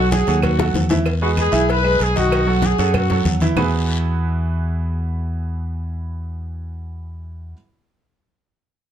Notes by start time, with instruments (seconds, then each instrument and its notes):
Already playing: fingered electric bass B1, grand piano F#3 F#4 A4
0.10 horn section G#4, cowbell, high conga, short guiro
0.27 fingered electric bass D#2, grand piano F#3 F#4 A4, cowbell, high conga, short guiro
0.42 horn section F#4, cowbell, high conga, low conga, long guiro, claves
0.58 grand piano F#3 F#4 A4, cowbell, high bongo, high conga, low conga
0.74 fingered electric bass E2, cowbell, low bongo, high conga, short guiro
0.89 grand piano E3 E4 E5, cowbell, low bongo, high conga, short guiro
1.06 cowbell, high conga, long guiro, claves
1.22 grand piano G#3 G#4 B4, horn section F#4, high conga
1.37 grand piano G#3 G#4 B4, horn section G#4, cowbell, high conga, short guiro, claves
1.52 fingered electric bass B1, grand piano E3 E4 E5, cowbell, short guiro
1.69 horn section B4, cowbell, high conga, long guiro
1.84 grand piano G#3 G#4 B4, high conga, claves
1.99 fingered electric bass B1, horn section G#4, cowbell, high conga, short guiro
2.16 grand piano D#3 D#4 D#5, horn section F#4, cowbell, high conga, short guiro
2.31 grand piano D#3 D#4 D#5, cowbell, high conga, long guiro, claves
2.47 grand piano F#3 F#4 A4, high conga
2.62 horn section G#4, cowbell, high conga, short guiro
2.78 fingered electric bass F#2, grand piano F#3 F#4 A4, cowbell, high conga, short guiro
2.94 horn section F#4, cowbell, high conga, low conga, long guiro, claves
3.10 grand piano F#3 F#4 A4, cowbell, high conga, low conga
3.25 fingered electric bass E2, cowbell, high conga, short guiro
3.40 grand piano E3 E4 E5, cowbell, high conga, short guiro
3.56 fingered electric bass E2, grand piano E3 B3 E4 F#4 G#4 B4, low bongo, low conga, long guiro, claves